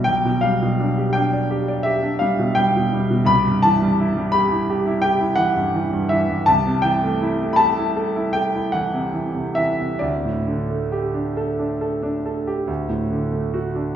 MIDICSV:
0, 0, Header, 1, 2, 480
1, 0, Start_track
1, 0, Key_signature, 1, "major"
1, 0, Tempo, 708383
1, 49, Time_signature, 9, 3, 24, 8
1, 3889, Tempo, 745342
1, 5329, Tempo, 803213
1, 6289, Tempo, 890208
1, 7729, Tempo, 860832
1, 8681, End_track
2, 0, Start_track
2, 0, Title_t, "Grand piano"
2, 0, Program_c, 0, 0
2, 0, Control_c, 0, 64, 127
2, 29, Note_on_c, 0, 79, 101
2, 49, Note_on_c, 0, 35, 57
2, 58, Control_c, 0, 64, 0
2, 159, Control_c, 0, 64, 127
2, 170, Note_on_c, 0, 47, 46
2, 278, Note_on_c, 0, 77, 79
2, 282, Note_off_c, 0, 79, 0
2, 293, Note_on_c, 0, 55, 46
2, 366, Note_off_c, 0, 47, 0
2, 423, Note_on_c, 0, 47, 47
2, 489, Note_off_c, 0, 55, 0
2, 542, Note_on_c, 0, 62, 54
2, 615, Note_off_c, 0, 47, 0
2, 664, Note_on_c, 0, 67, 50
2, 736, Note_off_c, 0, 62, 0
2, 764, Note_on_c, 0, 79, 88
2, 775, Note_off_c, 0, 77, 0
2, 780, Note_on_c, 0, 62, 56
2, 856, Note_off_c, 0, 67, 0
2, 902, Note_on_c, 0, 74, 52
2, 973, Note_off_c, 0, 62, 0
2, 1020, Note_on_c, 0, 67, 54
2, 1090, Note_off_c, 0, 74, 0
2, 1140, Note_on_c, 0, 74, 63
2, 1207, Note_off_c, 0, 67, 0
2, 1241, Note_on_c, 0, 76, 90
2, 1245, Note_off_c, 0, 79, 0
2, 1256, Note_on_c, 0, 67, 52
2, 1326, Note_off_c, 0, 74, 0
2, 1373, Note_on_c, 0, 62, 51
2, 1445, Note_off_c, 0, 67, 0
2, 1484, Note_on_c, 0, 77, 75
2, 1487, Note_off_c, 0, 76, 0
2, 1500, Note_on_c, 0, 55, 53
2, 1567, Note_off_c, 0, 62, 0
2, 1620, Note_on_c, 0, 47, 51
2, 1692, Note_off_c, 0, 55, 0
2, 1727, Note_on_c, 0, 79, 102
2, 1734, Note_off_c, 0, 77, 0
2, 1742, Note_on_c, 0, 55, 51
2, 1813, Note_off_c, 0, 47, 0
2, 1872, Note_on_c, 0, 47, 48
2, 1935, Note_off_c, 0, 55, 0
2, 1987, Note_on_c, 0, 55, 56
2, 2059, Note_off_c, 0, 47, 0
2, 2104, Note_on_c, 0, 47, 51
2, 2176, Note_off_c, 0, 55, 0
2, 2193, Note_off_c, 0, 35, 0
2, 2202, Note_on_c, 0, 36, 75
2, 2212, Note_on_c, 0, 83, 110
2, 2215, Note_off_c, 0, 79, 0
2, 2223, Note_off_c, 0, 47, 0
2, 2232, Control_c, 0, 64, 0
2, 2314, Control_c, 0, 64, 127
2, 2348, Note_on_c, 0, 43, 51
2, 2456, Note_on_c, 0, 81, 98
2, 2457, Note_off_c, 0, 83, 0
2, 2472, Note_on_c, 0, 52, 53
2, 2537, Note_off_c, 0, 43, 0
2, 2589, Note_on_c, 0, 55, 52
2, 2658, Note_off_c, 0, 52, 0
2, 2710, Note_on_c, 0, 64, 63
2, 2775, Note_off_c, 0, 55, 0
2, 2823, Note_on_c, 0, 55, 60
2, 2896, Note_off_c, 0, 64, 0
2, 2926, Note_on_c, 0, 83, 107
2, 2936, Note_off_c, 0, 81, 0
2, 2939, Note_on_c, 0, 67, 63
2, 3012, Note_off_c, 0, 55, 0
2, 3061, Note_on_c, 0, 64, 51
2, 3129, Note_off_c, 0, 67, 0
2, 3184, Note_on_c, 0, 67, 62
2, 3249, Note_off_c, 0, 64, 0
2, 3298, Note_on_c, 0, 64, 64
2, 3368, Note_off_c, 0, 67, 0
2, 3399, Note_on_c, 0, 79, 100
2, 3403, Note_off_c, 0, 83, 0
2, 3415, Note_on_c, 0, 67, 62
2, 3481, Note_off_c, 0, 64, 0
2, 3528, Note_on_c, 0, 64, 58
2, 3599, Note_off_c, 0, 67, 0
2, 3629, Note_on_c, 0, 78, 112
2, 3638, Note_off_c, 0, 79, 0
2, 3644, Note_on_c, 0, 52, 53
2, 3716, Note_off_c, 0, 64, 0
2, 3770, Note_on_c, 0, 43, 56
2, 3838, Note_off_c, 0, 52, 0
2, 3896, Note_on_c, 0, 52, 57
2, 3962, Note_off_c, 0, 43, 0
2, 4013, Note_on_c, 0, 43, 55
2, 4084, Note_off_c, 0, 52, 0
2, 4116, Note_on_c, 0, 76, 87
2, 4121, Note_off_c, 0, 78, 0
2, 4130, Note_on_c, 0, 52, 57
2, 4203, Note_off_c, 0, 43, 0
2, 4248, Note_on_c, 0, 43, 51
2, 4321, Note_off_c, 0, 52, 0
2, 4332, Note_off_c, 0, 36, 0
2, 4353, Note_on_c, 0, 81, 107
2, 4361, Note_off_c, 0, 76, 0
2, 4367, Note_off_c, 0, 43, 0
2, 4367, Note_on_c, 0, 36, 74
2, 4379, Control_c, 0, 64, 0
2, 4475, Control_c, 0, 64, 127
2, 4482, Note_on_c, 0, 48, 51
2, 4584, Note_on_c, 0, 79, 93
2, 4595, Note_off_c, 0, 81, 0
2, 4598, Note_on_c, 0, 52, 54
2, 4671, Note_off_c, 0, 48, 0
2, 4718, Note_on_c, 0, 57, 55
2, 4789, Note_off_c, 0, 52, 0
2, 4839, Note_on_c, 0, 64, 60
2, 4910, Note_off_c, 0, 57, 0
2, 4960, Note_on_c, 0, 57, 52
2, 5030, Note_off_c, 0, 79, 0
2, 5032, Note_off_c, 0, 64, 0
2, 5042, Note_on_c, 0, 83, 83
2, 5063, Note_on_c, 0, 81, 108
2, 5080, Note_on_c, 0, 69, 55
2, 5083, Note_off_c, 0, 83, 0
2, 5156, Note_off_c, 0, 57, 0
2, 5201, Note_on_c, 0, 64, 52
2, 5278, Note_off_c, 0, 69, 0
2, 5322, Note_on_c, 0, 69, 60
2, 5396, Note_off_c, 0, 64, 0
2, 5440, Note_on_c, 0, 64, 63
2, 5510, Note_off_c, 0, 69, 0
2, 5540, Note_on_c, 0, 79, 93
2, 5550, Note_off_c, 0, 81, 0
2, 5554, Note_on_c, 0, 69, 50
2, 5627, Note_off_c, 0, 64, 0
2, 5671, Note_on_c, 0, 64, 51
2, 5744, Note_off_c, 0, 69, 0
2, 5775, Note_on_c, 0, 78, 88
2, 5784, Note_off_c, 0, 79, 0
2, 5788, Note_on_c, 0, 52, 51
2, 5863, Note_off_c, 0, 64, 0
2, 5903, Note_on_c, 0, 48, 52
2, 5984, Note_off_c, 0, 52, 0
2, 6025, Note_on_c, 0, 52, 52
2, 6105, Note_off_c, 0, 48, 0
2, 6148, Note_on_c, 0, 48, 45
2, 6231, Note_off_c, 0, 52, 0
2, 6270, Note_on_c, 0, 76, 88
2, 6279, Note_off_c, 0, 78, 0
2, 6282, Note_on_c, 0, 52, 47
2, 6354, Note_off_c, 0, 48, 0
2, 6404, Note_on_c, 0, 48, 46
2, 6478, Note_off_c, 0, 52, 0
2, 6509, Note_off_c, 0, 36, 0
2, 6510, Note_on_c, 0, 74, 78
2, 6520, Note_on_c, 0, 38, 57
2, 6522, Note_off_c, 0, 76, 0
2, 6528, Note_off_c, 0, 48, 0
2, 6539, Control_c, 0, 64, 0
2, 6649, Note_on_c, 0, 45, 41
2, 6653, Control_c, 0, 64, 127
2, 6770, Note_on_c, 0, 50, 47
2, 6846, Note_off_c, 0, 45, 0
2, 6892, Note_on_c, 0, 57, 44
2, 6965, Note_off_c, 0, 50, 0
2, 7011, Note_on_c, 0, 67, 53
2, 7083, Note_off_c, 0, 57, 0
2, 7129, Note_on_c, 0, 62, 49
2, 7201, Note_off_c, 0, 67, 0
2, 7252, Note_on_c, 0, 69, 53
2, 7319, Note_off_c, 0, 62, 0
2, 7372, Note_on_c, 0, 62, 50
2, 7441, Note_off_c, 0, 69, 0
2, 7491, Note_on_c, 0, 69, 49
2, 7563, Note_off_c, 0, 62, 0
2, 7607, Note_on_c, 0, 62, 54
2, 7682, Note_off_c, 0, 69, 0
2, 7731, Note_on_c, 0, 69, 46
2, 7800, Note_off_c, 0, 62, 0
2, 7853, Note_on_c, 0, 67, 50
2, 7922, Note_off_c, 0, 69, 0
2, 7939, Note_off_c, 0, 38, 0
2, 7956, Note_off_c, 0, 74, 0
2, 7965, Note_on_c, 0, 38, 54
2, 7968, Note_off_c, 0, 67, 0
2, 7977, Control_c, 0, 64, 0
2, 8071, Control_c, 0, 64, 127
2, 8085, Note_on_c, 0, 45, 44
2, 8205, Note_on_c, 0, 50, 50
2, 8274, Note_off_c, 0, 45, 0
2, 8321, Note_on_c, 0, 57, 43
2, 8397, Note_off_c, 0, 50, 0
2, 8445, Note_on_c, 0, 66, 49
2, 8518, Note_off_c, 0, 57, 0
2, 8567, Note_on_c, 0, 62, 44
2, 8640, Note_off_c, 0, 66, 0
2, 8665, Note_off_c, 0, 38, 0
2, 8681, Note_off_c, 0, 62, 0
2, 8681, End_track
0, 0, End_of_file